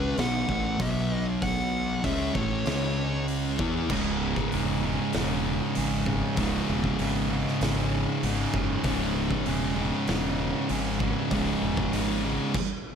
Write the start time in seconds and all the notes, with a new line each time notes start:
Already playing: C#2 C#3 G#3 C#4 B4
0.17 B1 B2 F#3 B3 F#5, snare, open hi-hat
0.48 A1 A2 E3 A3, kick
0.79 B1 B2 F#3 B3 E5, kick, open hi-hat
1.42 F#5, kick, open hi-hat
2.04 C#2 C#3 G#3 C#4 E5, kick, open hi-hat
2.34 A1 A2 E3 A3 C#5, kick
2.66 C#2 C#3 G#3 C#4, snare, open hi-hat
3.28 open hi-hat
3.59 E2 E3 B3 E4, kick
3.90 C#1 C#2 G#2 C#3, kick, crash
4.36 kick
4.52 E1 C#2 G#2 C#3, open hi-hat
4.84 C#2 G#2 C#3
5.13 E1 C#2 G#2 C#3, snare, open hi-hat
5.75 G#1 C#2 G#2 C#3, open hi-hat
6.06 C#2 G#2 C#3, kick
6.37 C#1 C#2 G#2 C#3, kick, open hi-hat
6.69 E1
6.84 kick
6.99 G#1 C#2 G#2 C#3, open hi-hat
7.31 C#2 G#2 C#3
7.47 snare
7.61 G#1 C#2 G#2 C#3, snare, open hi-hat
8.23 G#1 C#2 G#2 C#3, open hi-hat
8.54 F#1 C#2 G#2 C#3, kick
8.84 C#1 C#2 G#2 C#3, kick, open hi-hat
9.31 kick
9.46 E1 C#2 G#2 C#3, open hi-hat
9.77 C#2 G#2 C#3
10.07 E1 C#2 G#2 C#3, snare, open hi-hat
10.69 G#1 C#2 G#2 C#3, open hi-hat
11.00 C#2 G#2 C#3, kick
11.31 C#1 C#2 G#2 C#3, kick, open hi-hat
11.35 C#3
11.62 E1
11.77 kick
11.93 G#1 C#2 G#2 C#3, open hi-hat
12.24 C#2 G#2 C#3
12.54 kick, crash